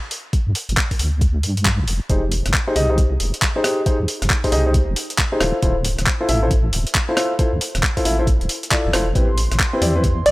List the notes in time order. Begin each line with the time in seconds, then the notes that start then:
0.11 open hi-hat
0.33 kick, closed hi-hat
0.47 G2
0.55 open hi-hat
0.69 G1, closed hi-hat
0.77 kick, clap
0.91 kick, open hi-hat
0.99 D2, open hi-hat
1.21 kick, closed hi-hat
1.43 G2, open hi-hat
1.57 closed hi-hat
1.65 kick, clap, closed hi-hat
1.80 A#1
1.88 F1, open hi-hat
2.09 F1 D#4 G4 G#4 C5, kick, closed hi-hat
2.32 open hi-hat
2.46 F1, cross-stick, closed hi-hat
2.54 kick, clap
2.67 D#4 G4 G#4 C5
2.76 C2 D#4 G4 G#4 D#5, open hi-hat
2.90 D#4 G4 G#4 C5
2.98 kick, closed hi-hat
3.20 F1, open hi-hat
3.34 closed hi-hat
3.42 kick, clap, closed hi-hat
3.56 D#4 G4 G#4 C5
3.64 D#4 G4 G#4, cross-stick, open hi-hat
3.86 D#4 G4 G#4 C5, kick, closed hi-hat
4.00 F2
4.08 open hi-hat
4.22 F1, cross-stick, closed hi-hat
4.30 kick, clap
4.44 D#4 G4 G#4 C5, kick, open hi-hat
4.52 C2 D#4 G4 G#4 D#5, open hi-hat
4.66 D#4 G4 G#4 C5
4.74 kick, closed hi-hat
4.88 F1
4.96 open hi-hat
5.10 closed hi-hat
5.18 kick, clap, closed hi-hat
5.32 D#4 G4 G#4 C5
5.40 D1 E4 F4 A4 C5, cross-stick, open hi-hat
5.62 D1 E4 F4 A4 C5, kick, closed hi-hat
5.85 open hi-hat
5.99 D1, cross-stick, closed hi-hat
6.07 kick, clap
6.21 E4 F4 A4 C5
6.29 A1 E4 F4 A4 E5, open hi-hat
6.43 E4 F4 A4 C5
6.51 kick, closed hi-hat
6.73 D1, open hi-hat
6.87 closed hi-hat
6.95 kick, clap, closed hi-hat
7.09 E4 F4 A4 C5
7.17 E4 F4 A4 C5, cross-stick, open hi-hat
7.39 E4 F4 A4 C5, kick, closed hi-hat
7.53 D2
7.61 open hi-hat
7.75 D1, cross-stick, closed hi-hat
7.83 kick, clap
7.97 E4 F4 A4 C5, kick, open hi-hat
8.05 A1 E4 F4 A4 E5, open hi-hat
8.19 E4 F4 A4 C5
8.27 kick, closed hi-hat
8.41 D1, closed hi-hat
8.49 open hi-hat
8.63 closed hi-hat
8.71 E4 F4 A4 D5, kick, clap, closed hi-hat
8.85 F1
8.93 F1 E4 F4 A4 C5, cross-stick, open hi-hat
9.15 A1 C4 E4 G4 B4 C6, kick, closed hi-hat
9.38 open hi-hat
9.51 A1, cross-stick, closed hi-hat
9.60 kick, clap
9.73 C4 E4 G4 B4
9.81 E2 C4 E4 G4 D5, open hi-hat
9.96 C4 E4 G4 B4
10.04 kick, closed hi-hat
10.26 A1 D5, open hi-hat